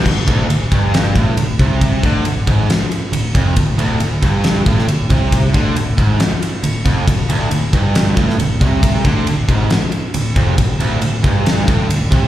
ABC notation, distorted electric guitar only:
X:1
M:4/4
L:1/8
Q:1/4=137
K:Clyd
V:1 name="Distorted electric guitar" clef=bass
D,, D,, D,, G,,2 A,, D,, C,- | C, D, D,, ^G,, z2 D,, =F,, | D,, D,, D,, G,,2 A,, D,, C,- | C, D, D,, ^G,, z2 D,, =F,, |
D,, D,, D,, G,,2 A,, D,, C,- | C, D, D,, ^G,, z2 D,, =F,, | D,, D,, D,, G,,2 A,, D,, C, |]